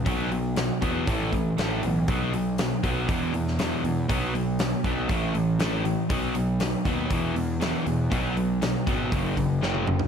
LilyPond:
<<
  \new Staff \with { instrumentName = "Distorted electric guitar" } { \clef bass \time 4/4 \key a \lydian \tempo 4 = 119 <b, fis b>8 <b, fis>8 <b, fis>8 <b, fis b>8 <a, e a>8 <a, e>8 <a, e a>8 <a, e>8 | <b, fis b>8 <b, fis>8 <b, fis>8 <b, fis b>8 <e, b, e>8 <e, b,>8 <e, b, e>8 <e, b,>8 | <b, fis b>8 <b, fis>8 <b, fis>8 <b, fis b>8 <a, e a>8 <a, e>8 <a, e a>8 <a, e>8 | <b, fis b>8 <b, fis>8 <b, fis>8 <b, fis b>8 <e, b, e>8 <e, b,>8 <e, b, e>8 <e, b,>8 |
<b, fis b>8 <b, fis>8 <b, fis>8 <b, fis b>8 <fis, cis fis>8 <fis, cis>8 <fis, cis fis>8 <fis, cis>8 | }
  \new Staff \with { instrumentName = "Distorted electric guitar" } { \clef bass \time 4/4 \key a \lydian <b, fis b>8 <b, fis>8 <b, fis>8 <b, fis b>8 <a, e a>8 <a, e>8 <a, e a>8 <a, e>8 | <b, fis b>8 <b, fis>8 <b, fis>8 <b, fis b>8 <e, b, e>8 <e, b,>8 <e, b, e>8 <e, b,>8 | <b, fis b>8 <b, fis>8 <b, fis>8 <b, fis b>8 <a, e a>8 <a, e>8 <a, e a>8 <a, e>8 | <b, fis b>8 <b, fis>8 <b, fis>8 <b, fis b>8 <e, b, e>8 <e, b,>8 <e, b, e>8 <e, b,>8 |
<b, fis b>8 <b, fis>8 <b, fis>8 <b, fis b>8 <fis, cis fis>8 <fis, cis>8 <fis, cis fis>8 <fis, cis>8 | }
  \new Staff \with { instrumentName = "Picked electric bass" } { \clef bass \time 4/4 \key a \lydian b,,4. e,8 a,,4 a,,8 b,,8 | b,,4. b,,8 e,4. e,8 | b,,4. b,,8 a,,2 | b,,4. dis,8 e,4. e,8 |
b,,4. gis,,8 fis,,2 | }
  \new DrumStaff \with { instrumentName = "Drums" } \drummode { \time 4/4 <hho bd>8 hho8 <hho sn>8 <hho bd>8 <hho bd>8 <hho bd>8 <hho sn>8 hho8 | <hho bd>8 hho8 <hho sn>8 <hho bd>8 <hho bd>8 hho16 sn16 <hho sn>8 hho8 | <hho bd>8 hho8 <hho sn>8 <hho bd>8 <hho bd>8 hho8 <hho sn>8 hho8 | <hho bd>8 hho8 <hho sn>8 <hho bd>8 <hho bd>8 hho8 <hho sn>8 hho8 |
<hho bd>8 hho8 <hho sn>8 <hho bd>8 <hho bd>8 <hho bd>8 sn16 tommh16 toml16 tomfh16 | }
>>